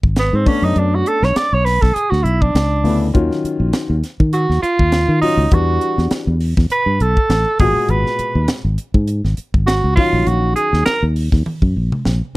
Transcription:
0.03 fingered electric bass G#1, kick
0.16 tenor saxophone B3, snare, closed hi-hat
0.33 fingered electric bass G#2, tenor saxophone C4
0.46 grand piano A3 B3 C#4 D4, tenor saxophone C#4, muted fingered electric bass stroke, kick, open hi-hat
0.62 fingered electric bass F#2, tenor saxophone D#4
0.76 fingered electric bass F#2, tenor saxophone D4, closed hi-hat
0.95 tenor saxophone F#4
1.06 tenor saxophone A4, closed hi-hat
1.22 fingered electric bass B1, tenor saxophone C#5, snare
1.36 tenor saxophone D5, snare, closed hi-hat
1.53 fingered electric bass B1, tenor saxophone C#5
1.64 tenor saxophone B4, snare, open hi-hat
1.82 fingered electric bass B1, tenor saxophone A4, kick, snare
1.94 tenor saxophone G#4, muted fingered electric bass stroke, closed hi-hat
2.10 fingered electric bass D2, tenor saxophone F#4, snare
2.23 fingered electric bass B1, tenor saxophone E4, closed hi-hat
2.41 tenor saxophone D4, kick
2.55 fingered electric bass C#2, snare, closed hi-hat
2.84 fingered electric bass D2, grand piano C#3 A3 B3 E4, open hi-hat
3.14 fingered electric bass D#2, grand piano D#3 F#3 C#4 F4, kick, closed hi-hat
3.31 snare
3.44 muted fingered electric bass stroke, closed hi-hat
3.60 fingered electric bass A#1
3.73 snare, closed hi-hat
3.90 fingered electric bass D#2
4.04 snare, closed hi-hat
4.20 fingered electric bass D#3, kick
4.33 tenor saxophone F#4, closed hi-hat
4.49 fingered electric bass D#2, snare
4.62 tenor saxophone F4, muted fingered electric bass stroke, closed hi-hat
4.79 fingered electric bass D#2, kick
4.92 snare, closed hi-hat
5.08 fingered electric bass D#3
5.21 grand piano D#3 F#3 C#4 F4, tenor saxophone D#4, muted fingered electric bass stroke, open hi-hat
5.37 fingered electric bass C#2
5.51 fingered electric bass E2, grand piano E3 G3 D4 F#4, tenor saxophone F#4, kick, closed hi-hat
5.81 closed hi-hat
5.98 fingered electric bass E2, snare
6.11 muted fingered electric bass stroke, snare, closed hi-hat
6.27 fingered electric bass E2
6.40 open hi-hat
6.57 fingered electric bass E2, kick, snare
6.70 tenor saxophone B4, muted fingered electric bass stroke, closed hi-hat
6.86 fingered electric bass G2
7.00 fingered electric bass B1, tenor saxophone A4, closed hi-hat
7.17 kick
7.29 fingered electric bass A1, snare, closed hi-hat
7.59 fingered electric bass G#1, grand piano A#2 B2 G#3 F#4, tenor saxophone G#4, kick, open hi-hat
7.89 fingered electric bass G#1, tenor saxophone B4, closed hi-hat
8.06 snare
8.19 muted fingered electric bass stroke, closed hi-hat
8.35 fingered electric bass D#2
8.48 snare, closed hi-hat
8.65 fingered electric bass G#1
8.78 closed hi-hat
8.94 fingered electric bass G#2, kick
9.08 closed hi-hat
9.24 fingered electric bass G#1, snare
9.37 closed hi-hat
9.54 fingered electric bass G#1, kick
9.67 tenor saxophone F#4, snare, closed hi-hat
9.84 fingered electric bass C#2
9.96 grand piano D#3 F#3 C#4 F5, tenor saxophone F4, muted fingered electric bass stroke, kick, open hi-hat
10.13 fingered electric bass A#1
10.27 fingered electric bass A#1, tenor saxophone F#4, closed hi-hat
10.55 tenor saxophone G#4, closed hi-hat
10.73 fingered electric bass D#2, snare
10.85 tenor saxophone A#4, muted fingered electric bass stroke, snare, closed hi-hat
11.03 fingered electric bass D#2
11.16 open hi-hat
11.32 fingered electric bass D#2, kick, snare
11.46 muted fingered electric bass stroke, high tom
11.62 fingered electric bass F#2, kick
11.76 fingered electric bass A#1
11.92 mid tom
12.05 fingered electric bass A#1, snare

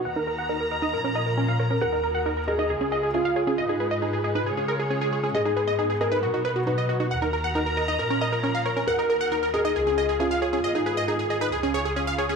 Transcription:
Already playing: felt piano B4
0.05 string section D#2 D#3 F#4 A#5, supersaw synth F#5
0.16 synth pluck D#4, supersaw synth A#4
0.27 synth pluck A#4, supersaw synth A#4
0.38 supersaw synth F#5
0.49 synth pluck D#4, supersaw synth A#4
0.60 supersaw synth A#4
0.71 supersaw synth A#4, synth pluck D#5
0.82 synth pluck D#4, supersaw synth D#5
0.93 string section A#2 F3 C#4, supersaw synth A#4
1.04 synth pluck C#4, supersaw synth A#4
1.15 synth pluck A#4, supersaw synth D#5
1.26 supersaw synth A#4
1.37 synth pluck C#4, supersaw synth A#4
1.48 supersaw synth F5
1.59 supersaw synth A#4, synth pluck C#5
1.70 synth pluck C#4, supersaw synth A#4
1.81 string section D#2 D#3 F#4, felt piano A#4, supersaw synth F#5
1.92 synth pluck D#4, supersaw synth A#4
2.03 supersaw synth A#4, synth pluck A#4
2.15 supersaw synth F#5
2.26 synth pluck D#4, supersaw synth A#4
2.37 supersaw synth A#4
2.48 felt piano G#4, supersaw synth A#4, synth pluck D#5
2.59 synth pluck D#4, supersaw synth D#5
2.70 string section C#2 C#3 F4 G#4, supersaw synth G#4
2.81 synth pluck C#4, supersaw synth G#4
2.92 synth pluck G#4, supersaw synth D#5
3.03 supersaw synth G#4
3.14 synth pluck C#4, felt piano F4, supersaw synth G#4
3.25 supersaw synth F5
3.36 supersaw synth G#4, synth pluck C#5
3.47 synth pluck C#4, supersaw synth G#4
3.58 string section G#2 G#3 D#4 B4, supersaw synth D#5
3.69 synth pluck D#4, supersaw synth G#4
3.80 supersaw synth G#4, synth pluck B4
3.91 supersaw synth D#5
4.02 synth pluck D#4, supersaw synth G#4
4.13 supersaw synth G#4
4.24 supersaw synth G#4, synth pluck D#5
4.35 synth pluck D#4, supersaw synth B4
4.46 string section C#3 F4 C#5, supersaw synth G#4
4.57 synth pluck C#4, supersaw synth G#4
4.68 synth pluck G#4, supersaw synth A#4
4.79 supersaw synth G#4
4.90 synth pluck C#4, supersaw synth G#4
5.01 supersaw synth G#4
5.12 supersaw synth G#4, synth pluck C#5
5.24 synth pluck C#4, supersaw synth G#4
5.34 string section G#2 B3 D#4, felt piano G#4, supersaw synth D#5
5.45 synth pluck D#4, supersaw synth G#4
5.57 supersaw synth G#4, synth pluck B4
5.68 supersaw synth D#5
5.79 synth pluck D#4, supersaw synth G#4
5.90 supersaw synth G#4
6.01 supersaw synth G#4, felt piano A#4, synth pluck D#5
6.12 synth pluck D#4, supersaw synth B4
6.23 string section B2 F#3 D#4, supersaw synth F#4
6.34 synth pluck D#4, supersaw synth F#4
6.45 supersaw synth B4, synth pluck B4
6.56 supersaw synth F#4
6.67 synth pluck D#4, supersaw synth F#4, felt piano B4
6.78 supersaw synth D#5
6.89 supersaw synth F#4, synth pluck D#5
7.00 synth pluck D#4, supersaw synth F#4
7.11 string section D#2 D#3 F#4 A#5, supersaw synth F#5
7.22 synth pluck D#4, supersaw synth A#4
7.33 supersaw synth A#4, synth pluck A#4
7.44 supersaw synth F#5
7.55 synth pluck D#4, supersaw synth A#4
7.66 supersaw synth A#4
7.77 supersaw synth A#4, synth pluck D#5
7.88 synth pluck D#4, supersaw synth D#5
7.99 string section A#2 F3 C#4, supersaw synth A#4
8.10 synth pluck C#4, supersaw synth A#4
8.21 synth pluck A#4, supersaw synth D#5
8.32 supersaw synth A#4
8.43 synth pluck C#4, supersaw synth A#4
8.55 supersaw synth F5
8.65 supersaw synth A#4, synth pluck C#5
8.76 synth pluck C#4, supersaw synth A#4
8.87 string section D#2 D#3 F#4 A#4, felt piano A#4, supersaw synth F#5
8.99 synth pluck D#4, supersaw synth A#4
9.10 synth pluck A#4, supersaw synth A#4
9.21 supersaw synth F#5
9.32 synth pluck D#4, supersaw synth A#4
9.43 supersaw synth A#4
9.54 felt piano G#4, supersaw synth A#4, synth pluck D#5
9.65 synth pluck D#4, supersaw synth D#5
9.76 string section C#2 C#3 F4 G#4, supersaw synth G#4
9.87 synth pluck C#4, supersaw synth G#4
9.98 synth pluck G#4, supersaw synth D#5
10.09 supersaw synth G#4
10.20 synth pluck C#4, felt piano F4, supersaw synth G#4
10.31 supersaw synth F5
10.42 supersaw synth G#4, synth pluck C#5
10.53 synth pluck C#4, supersaw synth G#4
10.64 string section G#2 D#3 B3, supersaw synth D#5
10.75 synth pluck D#4, supersaw synth G#4
10.86 supersaw synth G#4, synth pluck B4
10.97 supersaw synth D#5
11.08 synth pluck D#4, supersaw synth G#4
11.19 supersaw synth G#4
11.30 supersaw synth G#4, synth pluck D#5
11.41 synth pluck D#4, supersaw synth B4
11.52 string section C#2 C#3 F4, supersaw synth G#4
11.63 synth pluck C#4, supersaw synth G#4
11.74 synth pluck G#4, supersaw synth C#5
11.85 supersaw synth G#4
11.96 synth pluck C#4, supersaw synth G#4
12.07 supersaw synth F5
12.18 supersaw synth G#4, synth pluck C#5
12.29 synth pluck C#4, supersaw synth G#4

